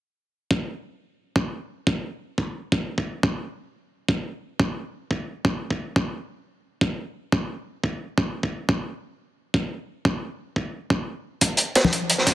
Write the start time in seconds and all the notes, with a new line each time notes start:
0.51 kick
1.36 kick
1.87 kick
2.38 kick
2.72 kick
2.98 kick
3.23 kick
4.08 kick
4.60 kick
5.11 kick
5.45 kick
5.71 kick
5.96 kick
6.81 kick
7.32 kick
7.84 kick
8.18 kick
8.43 kick
8.69 kick
9.54 kick
10.05 kick
10.56 kick
10.90 kick
11.41 kick, closed hi-hat
11.57 closed hi-hat
11.75 snare, closed hi-hat
11.84 snare, high conga
11.93 closed hi-hat
12.10 closed hi-hat
12.18 snare
12.26 kick, snare, closed hi-hat